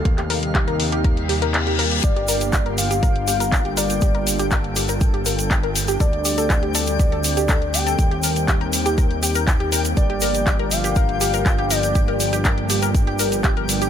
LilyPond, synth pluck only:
\new Staff \with { instrumentName = "Synth pluck" } { \time 4/4 \key g \minor \tempo 4 = 121 r16 g'16 bes'16 r16 g'16 bes'16 r16 g'16 bes'16 r16 g'16 bes'16 r16 g'16 bes'16 r16 | r16 g'16 bes'16 r16 g'16 bes'16 r16 g'16 bes'16 r16 g'16 bes'16 r16 g'16 bes'16 r16 | g'16 bes'16 r16 g'16 bes'16 r16 g'16 bes'16 r16 g'16 bes'16 r16 g'16 bes'16 r16 g'16 | a'16 r16 g'16 a'16 r16 g'16 a'16 r16 g'16 a'16 r16 g'16 a'16 r16 g'16 a'16 |
r16 g'16 bes'16 r16 g'16 bes'16 r16 g'16 bes'16 r16 g'16 bes'16 r16 g'16 bes'16 r16 | r16 g'16 bes'16 r16 g'16 bes'16 r16 g'16 bes'16 r16 g'16 bes'16 r16 g'16 bes'16 r16 | g'16 bes'16 r16 g'16 bes'16 r16 g'16 bes'16 r16 g'16 bes'16 r16 g'16 bes'16 r16 g'16 | }